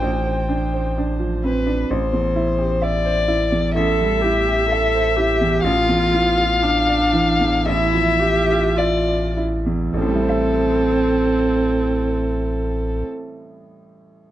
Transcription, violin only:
Already playing: G5
1.44 B4
1.90 C5
2.82 D5
3.74 E5
5.63 F5
7.65 E5
8.78 D5
9.95 A4

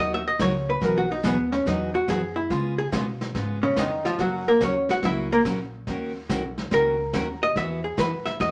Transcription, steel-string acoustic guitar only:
Already playing: B2 F#3 A#3 D#4 F#4
0.39 B2 F#3 A#3 D#4 F#4
0.81 B2 E3 F#3 B3 F#4 G#4
1.23 B2 E3 F#3 B3 F#4 G#4
1.66 B2 E3 F#3 B3 F#4 G#4
2.08 B2 E3 F#3 B3 F#4 G#4
2.50 C#3 G#3 B3 F4 G#4
2.92 C#3 G#3 B3 F4 G#4
3.35 C#3 G#3 B3 F4 G#4
3.76 C#3 G#3 B3 F4 G#4
4.18 C#3 F#3 A#3 C#4 F#4
4.60 C#3 F#3 A#3 C#4 F#4
5.03 C#3 F#3 A#3 C#4 F#4
5.45 C#3 F#3 A#3 C#4 F#4
5.88 D#3 A#3 C#4 F#4 A#4
6.29 D#3 A#3 C#4 F#4 A#4
6.71 D#3 A#3 C#4 F#4 A#4
7.13 D#3 A#3 C#4 F#4 A#4
7.56 E3 B3 E4 F#4
7.97 E3 B3 E4 F#4
8.40 E3 B3 E4 F#4

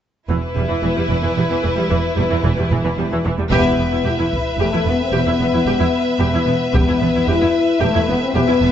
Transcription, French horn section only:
3.51 B3
4.07 E4
4.60 A3
4.88 B3
5.01 C4
5.15 B3
6.75 B3
7.27 E4
7.80 A3
8.07 B3
8.21 C4
8.35 B3

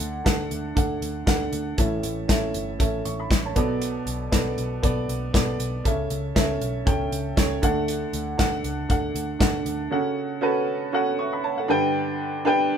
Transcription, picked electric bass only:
0.00 D2
0.26 D2
0.51 D2
0.77 D2
1.01 D2
1.27 D2
1.52 D2
1.78 A1
2.04 A1
2.29 A1
2.55 G1
2.80 A1
3.06 A1
3.30 A1
3.56 B1
4.06 B1
4.33 B1
4.58 B1
4.83 B1
5.09 B1
5.34 B1
5.59 B1
5.85 C#2
6.11 C#2
6.36 C#2
6.61 B1
6.87 C#2
7.12 C#2
7.37 C#2
7.63 D2
8.13 D2
8.39 D2
8.64 C#2
8.89 D2
9.15 D2
9.40 D2
9.66 D2

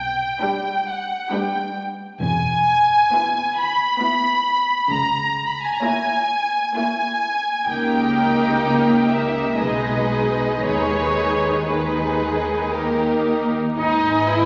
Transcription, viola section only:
0.42 G3 D4
1.33 G3 D4
3.13 B3 E4
4.01 B3 E4
5.83 A#3 E4
6.76 A#3 E4
7.67 A#3 D#4
9.58 G#3 D#4
10.61 G#3 D#4
11.67 G#3 D#4
12.74 A#3 D#4
13.78 D#4
14.27 E4

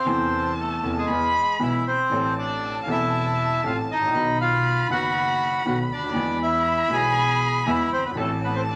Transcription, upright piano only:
0.05 E2 C3 E3 A3 E4
0.83 E2 C3 E3 A3 E4
1.08 E2 E3 G#3 B3 G#4
1.59 B1 B2 E3 G#3 B3 G#4
2.10 A1 A2 E3 A3 C4 A4
2.86 E1 E2 E3 A3 C4
2.90 A4
3.64 A1 A2 E3 A3 C4 A4
3.95 G#1
4.01 A1
4.07 A#1
4.13 B1 B2 D#3 F#3 B3 D#4
4.89 F#1 F#2 D#3 F#3 B3 F#4
5.65 B1 B2 D#3 F#3 B3 F#4
5.98 C#2
6.03 D2
6.10 D#2
6.15 E2 E3 G#3 B3 G#4
6.88 B1 B2 E3 G#3 B3 G#4
7.66 E2 E3 G#3 B3 G#4
7.98 F#1
8.05 G1
8.11 G#1
8.15 A1 A2 E3 A3 C4
8.19 A4

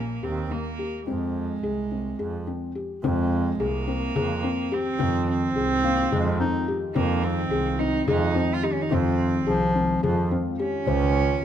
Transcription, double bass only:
Already playing: A#1
0.23 D#2
1.07 F2
1.63 C2
2.19 F2
3.03 F2
3.59 C2
4.16 F2
4.99 F2
5.55 C2
6.11 F2
6.96 F2
7.51 C2
8.07 F2
8.90 F2
9.46 C2
10.02 F2
10.86 C#2

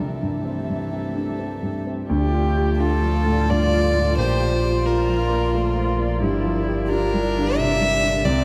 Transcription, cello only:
0.00 E3
2.10 G4
2.80 F4
4.19 G4
4.53 F4
6.23 E4
6.89 D4
8.26 C4

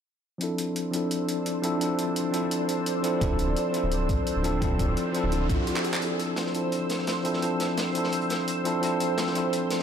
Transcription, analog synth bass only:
3.21 D1
3.48 D1
3.83 D1
4.09 A1
4.36 D1
4.62 D1
4.88 D1
5.24 D1
5.50 A1
6.02 D1
6.29 D1
6.64 D1
6.90 A1
7.17 D1
7.42 D1
7.69 D1
8.04 D1
8.30 A1
8.57 D1
8.83 D1
9.09 D1
9.44 D1
9.70 A1

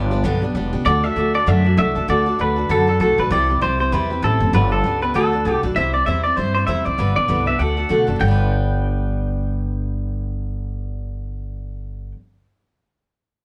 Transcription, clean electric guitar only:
0.86 D5
1.04 E5
1.35 D5
1.48 E5
1.78 E5
2.10 D5
2.41 B4
2.71 A4
2.89 A4
3.01 A4
3.20 B4
3.32 D5
3.62 C5
3.80 C5
3.93 B4
4.24 A4
4.55 B4
4.72 A4
5.02 B4
5.16 A4
5.76 E5
5.94 D5
6.06 E5
6.24 D5
6.36 C5
6.55 C5
6.67 E5
6.85 D5
7.16 D5
7.47 E5
7.59 F#5
8.21 G5

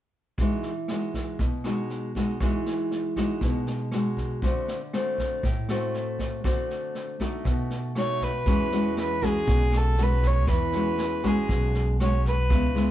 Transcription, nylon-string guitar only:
0.40 E3 G#3 D#4 F#4
0.91 G#3 D#4 F#4
1.40 B2
1.65 G#3 D#4 F#4
2.16 G#3 D#4 F#4
2.42 E3 G#3 D#4 F#4
3.17 G#3 D#4 F#4
3.42 B2
3.93 G#3 D#4 F#4
4.43 D3 A3 C4 F#4
4.94 A3 C4 F#4
5.44 A2
5.70 A3 C4 F#4
6.44 D3 A3 C4 F#4
7.20 A3 D#4 F#4
7.44 B2
7.97 A3 D#4 F#4
8.47 E3 G#3 C#4 F#4
8.72 G#3 C#4 F#4
9.22 G#3 C#4 F#4
9.47 B2
9.98 G#3 C#4 F#4
10.48 E3
10.74 G#3 C#4 F#4
11.24 G#3 C#4 F#4
11.51 B2
12.00 G#3 C#4 F#4
12.50 C#3 G#3 B3 E4
12.75 G#3 B3 E4

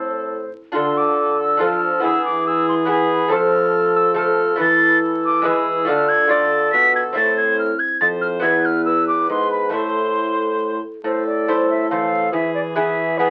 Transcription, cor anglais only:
Already playing: A4
0.76 A4
1.62 A4
2.04 G#4
2.46 G#4
2.89 G#4
3.31 A4
4.17 A4
4.60 A4
5.45 G#4
5.88 A4
6.30 A4
7.16 C5
8.02 C5
8.44 B4
8.87 B4
9.74 C5
11.04 A4
12.31 G#4
12.75 G#4
13.19 G#4

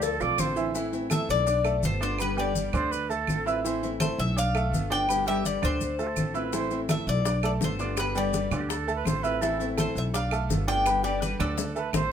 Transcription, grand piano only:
Already playing: F3 F4 A4
0.20 F3 F4 A4
0.56 E3 E4 E5
0.75 E3 E4 E5
1.10 A3 A4 A5
1.46 D4 D5 D6
1.64 A3 A4 A5
2.01 D4 D5 D6
2.19 B3 B4 B5
2.37 G3 G4 G5
2.73 D3 D4 D5
3.10 A3 A4 A5
3.46 E4 E5 E6
3.64 E3 E4 E5
4.00 A3 A4 A5
4.36 D4 D5 D6
4.54 A3 A4 A5
4.90 D4 D5 D6
5.09 B3 B4 B5
5.27 G3 G4 G5
5.62 D3 D4 D5
5.99 A3 A4 A5
6.34 E4 E5 E6
6.53 E3 E4 E5
6.89 A3 A4 A5
7.25 D4 D5 D6
7.43 A3 A4 A5
7.80 D4 D5 D6
7.97 B3 B4 B5
8.15 G3 G4 G5
8.52 D3 D4 D5
8.88 A3 A4 A5
9.23 E4 E5 E6
9.42 E3 E4 E5
9.77 A3 A4 A5
10.14 D4 D5 D6
10.32 A3 A4 A5
10.68 D4 D5 D6
10.86 B3 B4 B5
11.04 G3 G4 G5
11.40 D3 D4 D5
11.75 A3 A4 A5

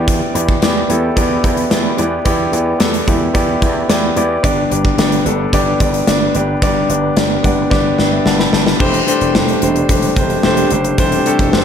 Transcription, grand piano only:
Already playing: E3 B3 E4 G4 D5
0.34 B3 E4 G4 D5
0.62 B3 E4 G4 D5
0.88 B3 E4 G4 A4
1.16 B3 E4 G4 D5
1.44 B3 E4 G4 D5
1.70 B3 E4 G4 D5
1.97 E3 B3 E4 G4 D5
2.25 B3 E4 G4 D5
2.52 B3 E4 G4 D5
2.79 B3 E4 G4 A4
3.07 B3 E4 G4 D5
3.34 B3 E4 G4 D5
3.62 B3 E4 G4 D5
3.88 B3 E4 G4 D5
4.16 B3 E4 G4 D5
4.43 G2 B3 D4 G4 D5
4.70 B3 D4 G4 D5
4.98 B3 D4 G4 D5
5.25 B3 D4 G4 A4
5.53 B3 D4 G4 D5
5.80 B3 D4 G4 D5
6.07 B3 D4 G4 D5
6.35 B3 D4 G4 D5
6.62 G2 B3 D4 G4 D5
6.90 B3 D4 G4 D5
7.16 B3 D4 G4 D5
7.43 B3 D4 G4 D5 F#5
7.70 B3 D4 G4 D5 G5
8.12 E5
8.26 F#5 A5
8.39 G5 B5
8.53 A5
8.67 B5
8.79 E3 A3 D4 G4 C5
9.07 A3 D4 G4 C5
9.35 A3 D4 G4 C5
9.62 A3 D4 G4 C5
9.89 A3 D4 G4 C5
10.16 A3 D4 G4 C5
10.44 A3 D4 G4 C5
10.71 A3 D4 G4 C5
10.98 E3 A3 D4 G4 C5
11.26 A3 D4 G4 A4
11.53 A3 D4 G4 C5

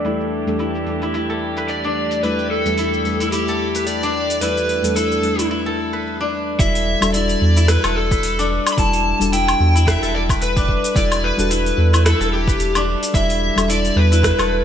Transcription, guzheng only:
Already playing: D4 A4 B4
0.05 E4
0.60 E4
1.03 E4
1.15 E4
1.30 A4
1.57 B4
1.85 D4
2.24 E4
2.79 E4
3.21 E4
3.33 E4
3.49 A4
3.76 B4
4.03 D4
4.43 E4
4.96 E4
5.39 E4
5.51 E4
5.66 A4
5.93 B4
6.21 D4
6.60 E4
7.15 E4
7.57 E4
7.69 E4
7.84 A4
8.12 B4
8.39 D4
8.78 E4
9.33 E4
9.75 E4
9.87 E4
10.03 A4
10.29 B4
10.57 D4
10.96 E4
11.50 E4
11.93 E4
12.06 E4
12.21 A4
12.48 B4
12.76 D4
13.14 E4
13.69 E4
14.12 E4
14.24 E4
14.39 A4

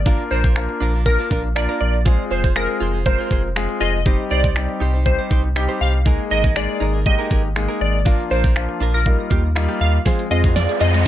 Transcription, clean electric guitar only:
0.06 D4 F4 A#4
0.31 D4 F4 A#4
0.44 D4 F4 A#4
0.69 muted clean electric guitar stroke
0.80 D4 F4 A#4
0.94 D4 F4 A#4
1.06 muted clean electric guitar stroke
1.19 D4 F4 A#4
1.30 D4 F4 A#4
1.44 muted clean electric guitar stroke
1.56 muted clean electric guitar stroke
1.69 D4 F4 A#4
1.81 muted clean electric guitar stroke
1.94 muted clean electric guitar stroke
2.05 F4 G#4 C5
2.30 F4 G#4 C5
2.44 F4 G#4 C5
2.56 muted clean electric guitar stroke
2.69 muted clean electric guitar stroke
2.80 F4 G#4 C5
2.94 F4 G#4 C5
3.06 muted clean electric guitar stroke
3.19 F4 G#4 C5
3.30 F4 G#4 C5
3.44 muted clean electric guitar stroke
3.69 muted clean electric guitar stroke
3.81 F4 G#4 C5
3.94 muted clean electric guitar stroke
4.05 D#4 G4 C5
4.30 D#4 G4 C5
4.44 D#4 G4 C5
4.69 muted clean electric guitar stroke
4.80 D#4 G4 C5
4.94 D#4 G4 C5
5.06 muted clean electric guitar stroke
5.19 D#4 G4 C5
5.30 D#4 G4 C5
5.44 muted clean electric guitar stroke
5.56 muted clean electric guitar stroke
5.69 D#4 G4 C5
5.81 D#4 G4 C5
5.94 muted clean electric guitar stroke
6.05 D#4 G#4 A#4
6.31 D#4 G#4 A#4
6.44 D#4 G#4 A#4
6.56 muted clean electric guitar stroke
6.69 muted clean electric guitar stroke
6.80 D#4 G#4 A#4
6.94 D#4 G#4 A#4
7.06 muted clean electric guitar stroke
7.19 D#4 G#4 A#4
7.30 D#4 G#4 A#4
7.44 muted clean electric guitar stroke
7.55 muted clean electric guitar stroke
7.69 D#4 G#4 A#4
7.94 muted clean electric guitar stroke
8.05 D4 F4 A#4
8.30 D4 F4 A#4
8.44 D4 F4 A#4
8.56 muted clean electric guitar stroke
8.69 muted clean electric guitar stroke
8.80 D4 F4 A#4
8.94 D4 F4 A#4
9.06 muted clean electric guitar stroke
9.19 muted clean electric guitar stroke
9.30 A#3 F4 G4
9.44 muted clean electric guitar stroke
9.56 muted clean electric guitar stroke
9.69 A#3 F4 G4
9.94 muted clean electric guitar stroke
10.05 F4 G#4 C5
10.30 F4 G#4 C5
10.44 F4 G#4 C5
10.69 muted clean electric guitar stroke
10.80 F4 G#4 C5
10.94 F4 G#4 C5

